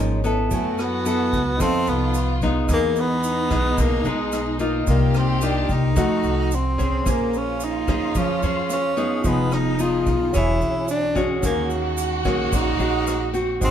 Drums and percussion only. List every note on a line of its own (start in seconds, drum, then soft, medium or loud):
0.24 closed hi-hat soft
0.24 shaker soft
0.51 kick medium
0.51 closed hi-hat soft
0.51 shaker medium
0.78 cross-stick medium
0.78 closed hi-hat soft
0.78 shaker soft
1.06 closed hi-hat soft
1.06 shaker medium
1.33 kick medium
1.33 closed hi-hat soft
1.33 shaker soft
1.60 kick medium
1.60 cross-stick medium
1.60 closed hi-hat soft
1.60 shaker medium
1.87 closed hi-hat soft
1.87 shaker soft
2.14 closed hi-hat soft
2.14 shaker medium
2.42 kick medium
2.42 closed hi-hat soft
2.42 shaker soft
2.69 kick medium
2.69 cross-stick medium
2.69 closed hi-hat soft
2.69 shaker medium
2.96 closed hi-hat soft
2.96 shaker soft
3.23 closed hi-hat soft
3.23 shaker medium
3.51 kick medium
3.51 cross-stick medium
3.51 shaker soft
3.78 kick medium
3.78 closed hi-hat soft
3.78 shaker medium
4.05 closed hi-hat soft
4.05 shaker soft
4.32 cross-stick medium
4.32 closed hi-hat soft
4.32 shaker medium
4.59 closed hi-hat soft
4.59 shaker soft
4.87 kick medium
4.87 closed hi-hat soft
4.87 shaker medium
5.14 cross-stick medium
5.14 closed hi-hat soft
5.14 shaker soft
5.41 closed hi-hat soft
5.41 shaker medium
5.69 kick medium
5.69 closed hi-hat soft
5.69 shaker soft
5.96 kick medium
5.96 cross-stick medium
5.96 closed hi-hat soft
5.96 shaker medium
6.24 closed hi-hat soft
6.24 shaker soft
6.51 closed hi-hat soft
6.51 shaker medium
6.79 kick medium
6.79 closed hi-hat soft
6.79 shaker soft
7.06 kick medium
7.06 cross-stick medium
7.06 closed hi-hat soft
7.06 shaker medium
7.33 closed hi-hat soft
7.33 shaker soft
7.60 closed hi-hat soft
7.60 shaker medium
7.88 kick medium
7.88 cross-stick medium
7.88 shaker soft
8.15 kick medium
8.15 closed hi-hat soft
8.15 shaker medium
8.42 closed hi-hat soft
8.42 shaker soft
8.70 cross-stick medium
8.70 closed hi-hat soft
8.70 shaker medium
8.97 closed hi-hat soft
8.97 shaker soft
9.24 kick medium
9.24 closed hi-hat soft
9.24 shaker medium
9.51 cross-stick medium
9.51 shaker soft
9.79 closed hi-hat soft
9.79 shaker medium
10.06 kick medium
10.06 closed hi-hat soft
10.06 shaker soft
10.34 kick medium
10.34 cross-stick medium
10.34 closed hi-hat soft
10.34 shaker medium
10.61 closed hi-hat soft
10.61 shaker soft
10.88 closed hi-hat soft
10.88 shaker medium
11.16 kick medium
11.16 closed hi-hat soft
11.16 shaker soft
11.43 kick medium
11.43 cross-stick medium
11.43 closed hi-hat soft
11.43 shaker medium
11.70 closed hi-hat soft
11.70 shaker soft
11.97 closed hi-hat soft
11.97 shaker medium
12.25 kick medium
12.25 cross-stick medium
12.25 shaker soft
12.53 kick medium
12.53 closed hi-hat soft
12.53 shaker medium
12.80 closed hi-hat soft
12.80 shaker soft
13.07 cross-stick medium
13.07 closed hi-hat soft
13.07 shaker medium
13.34 closed hi-hat soft
13.34 shaker soft
13.62 kick medium
13.62 shaker medium